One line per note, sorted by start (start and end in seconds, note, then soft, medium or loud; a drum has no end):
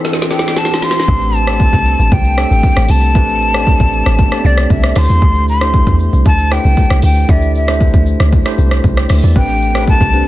0.00 0.30 E3 medium
0.00 0.31 C4 medium
0.00 0.31 D4 medium
0.00 1.10 E4 medium
0.00 0.71 G4 medium
0.00 0.32 A4 medium
0.00 1.10 C6 medium
0.05 0.42 A5 medium
0.05 snare medium
0.05 shaker medium
0.13 snare soft
0.17 shaker medium
0.22 snare medium
0.30 0.62 E3 medium
0.30 0.62 C4 medium
0.30 0.62 D4 medium
0.30 0.62 A4 medium
0.30 0.59 G5 medium
0.30 snare medium
0.30 shaker medium
0.39 snare medium
0.45 0.56 G5 medium
0.45 snare medium
0.45 shaker soft
0.56 0.81 F#5 medium
0.56 0.85 A5 loud
0.56 snare medium
0.56 shaker medium
0.65 snare medium
0.70 1.01 E3 medium
0.70 1.01 C4 medium
0.70 1.01 D4 medium
0.70 1.01 G4 medium
0.70 snare medium
0.70 shaker medium
0.82 1.07 E5 medium
0.82 1.37 C6 loud
0.82 snare medium
0.82 shaker medium
0.91 snare medium
0.96 snare medium
0.96 shaker medium
1.08 1.70 A1 loud
1.08 1.39 A3 medium
1.08 1.40 C4 medium
1.08 1.40 D4 medium
1.08 1.40 G4 medium
1.08 1.40 B4 medium
1.08 kick loud
1.08 shaker medium
1.21 shaker medium
1.34 2.15 A5 loud
1.34 shaker medium
1.47 2.20 A3 medium
1.47 2.20 C4 medium
1.47 2.20 D4 medium
1.47 2.20 G4 medium
1.47 2.20 A4 medium
1.47 cross-stick loud
1.47 shaker medium
1.60 kick loud
1.60 shaker medium
1.73 1.95 C2 loud
1.73 kick loud
1.73 shaker medium
1.86 shaker medium
1.99 2.10 A1 medium
1.99 shaker medium
2.12 2.45 C2 loud
2.12 2.92 G5 loud
2.12 kick loud
2.12 shaker medium
2.24 shaker medium
2.37 3.00 A3 medium
2.37 3.00 C4 medium
2.37 3.00 D4 medium
2.37 3.00 G4 medium
2.37 3.00 A4 medium
2.37 cross-stick medium
2.37 shaker medium
2.51 2.62 A1 medium
2.51 shaker medium
2.63 kick medium
2.63 shaker medium
2.77 2.87 A1 loud
2.77 cross-stick loud
2.77 shaker medium
2.89 3.17 C2 loud
2.89 4.47 A5 loud
2.89 open hi-hat medium
2.89 shaker loud
3.03 shaker medium
3.15 3.77 A1 loud
3.15 3.46 A3 medium
3.15 3.46 C4 medium
3.15 3.47 D4 medium
3.15 3.47 G4 medium
3.15 3.47 B4 medium
3.15 kick loud
3.15 shaker medium
3.28 shaker medium
3.41 shaker medium
3.54 4.16 A3 medium
3.54 4.16 C4 medium
3.54 4.16 D4 medium
3.54 4.16 G4 medium
3.54 4.17 D5 loud
3.54 cross-stick loud
3.54 shaker medium
3.67 kick medium
3.67 shaker medium
3.80 4.02 A1 medium
3.80 kick loud
3.80 shaker medium
3.93 shaker medium
4.06 4.28 A1 medium
4.06 cross-stick loud
4.06 shaker medium
4.18 kick loud
4.18 shaker medium
4.31 4.95 A3 medium
4.31 4.38 B3 medium
4.31 4.95 D4 medium
4.31 4.96 G4 medium
4.31 4.97 D5 medium
4.31 cross-stick loud
4.31 shaker medium
4.38 4.99 C4 medium
4.44 4.67 C2 loud
4.44 4.73 D5 medium
4.44 shaker medium
4.58 cross-stick loud
4.58 shaker medium
4.70 4.92 C2 loud
4.70 4.99 E5 medium
4.70 kick medium
4.70 shaker medium
4.84 cross-stick loud
4.84 shaker medium
4.96 5.08 D2 loud
4.96 5.48 A3 medium
4.96 5.48 D4 medium
4.96 5.48 E4 medium
4.96 5.48 G4 medium
4.96 5.03 B4 medium
4.96 5.49 C6 loud
4.96 cross-stick medium
4.96 open hi-hat medium
4.96 shaker loud
5.03 5.52 C5 medium
5.10 5.20 E2 medium
5.10 shaker medium
5.22 5.84 D2 loud
5.22 kick loud
5.22 shaker medium
5.35 shaker medium
5.48 5.96 C6 loud
5.48 shaker medium
5.61 6.33 A3 medium
5.61 6.34 D4 medium
5.61 6.34 E4 medium
5.61 6.34 G4 medium
5.61 6.34 C5 medium
5.61 cross-stick loud
5.61 shaker medium
5.74 kick loud
5.74 shaker medium
5.87 6.09 E2 loud
5.87 kick loud
5.87 shaker medium
6.00 shaker medium
6.13 6.24 C2 medium
6.13 shaker medium
6.25 6.59 D2 loud
6.25 6.54 A5 loud
6.25 kick loud
6.25 shaker medium
6.38 shaker medium
6.51 7.14 A3 medium
6.51 7.14 D4 medium
6.51 7.14 E4 medium
6.51 7.14 G4 medium
6.51 7.14 B4 medium
6.51 7.04 G5 loud
6.51 cross-stick medium
6.51 shaker medium
6.65 6.75 C2 medium
6.65 shaker medium
6.77 kick medium
6.77 shaker medium
6.90 7.01 C2 medium
6.90 cross-stick loud
6.90 shaker medium
7.02 7.25 D2 medium
7.02 7.32 G5 loud
7.02 open hi-hat medium
7.02 shaker loud
7.16 shaker medium
7.29 7.91 D2 loud
7.29 7.60 A3 medium
7.29 7.60 D4 medium
7.29 7.60 E4 medium
7.29 7.61 G4 medium
7.29 7.61 D5 medium
7.29 7.55 E5 loud
7.29 kick loud
7.29 shaker medium
7.42 shaker medium
7.55 8.04 E5 medium
7.55 shaker medium
7.68 8.30 A3 medium
7.68 8.30 D4 medium
7.68 8.30 E4 medium
7.68 8.30 G4 medium
7.68 8.30 C5 medium
7.68 cross-stick loud
7.68 shaker medium
7.80 kick medium
7.80 shaker medium
7.94 8.16 D2 medium
7.94 kick loud
7.94 shaker medium
8.06 shaker medium
8.20 8.42 D2 medium
8.20 cross-stick loud
8.20 shaker medium
8.32 kick loud
8.32 shaker medium
8.45 9.18 A3 medium
8.45 9.18 D4 medium
8.45 9.18 E4 medium
8.45 9.18 G4 medium
8.45 8.85 C5 loud
8.45 cross-stick loud
8.45 shaker medium
8.58 8.80 C2 medium
8.58 shaker medium
8.71 cross-stick loud
8.71 shaker soft
8.84 9.06 C2 loud
8.84 kick medium
8.84 shaker medium
8.97 9.10 D5 medium
8.97 9.10 G5 medium
8.97 cross-stick loud
8.97 shaker medium
9.09 9.21 D2 medium
9.09 9.23 B4 medium
9.09 9.23 E5 medium
9.09 cross-stick loud
9.09 open hi-hat medium
9.09 shaker loud
9.23 9.34 E2 medium
9.23 9.48 A4 medium
9.23 9.48 D5 medium
9.23 shaker medium
9.36 9.98 A1 loud
9.36 9.67 A3 medium
9.36 9.46 C4 medium
9.36 9.67 C4 medium
9.36 9.47 D4 medium
9.36 9.67 D4 medium
9.36 9.47 G4 medium
9.36 9.67 G4 medium
9.36 9.47 B4 loud
9.36 9.68 B4 medium
9.36 9.85 G5 loud
9.36 kick loud
9.36 shaker medium
9.49 shaker medium
9.62 shaker medium
9.75 10.28 A3 medium
9.75 10.10 C4 medium
9.75 10.28 C4 medium
9.75 10.10 D4 medium
9.75 10.28 D4 medium
9.75 10.10 G4 medium
9.75 10.28 G4 medium
9.75 9.82 A#4 medium
9.75 10.11 B4 medium
9.75 cross-stick loud
9.75 shaker medium
9.82 10.28 B4 medium
9.87 10.28 A5 loud
9.87 kick loud
9.87 shaker medium
10.01 10.23 C2 loud
10.01 kick loud
10.01 shaker medium
10.13 10.28 C4 medium
10.13 10.28 D4 medium
10.13 10.28 G4 medium
10.13 10.28 B4 medium
10.13 shaker medium